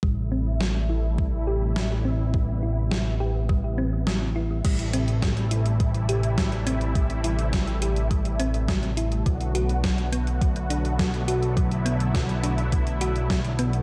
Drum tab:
CC |----------------|----------------|x---------------|----------------|
HH |----------------|----------------|xxxxxxxxxxxxxxxx|xxxxxxxxxxxxxxxx|
SD |----o-------o---|----o-------o---|----o-------o---|----o-------o---|
BD |o-------o-------|o-------o-------|o---o---o---o---|o---o---o---o---|

CC |----------------|----------------|
HH |xxxxxxxxxxxxxxxx|xxxxxxxxxxxxxxxx|
SD |----o-------o---|----o-------o---|
BD |o---o---o---o---|o---o---o---o---|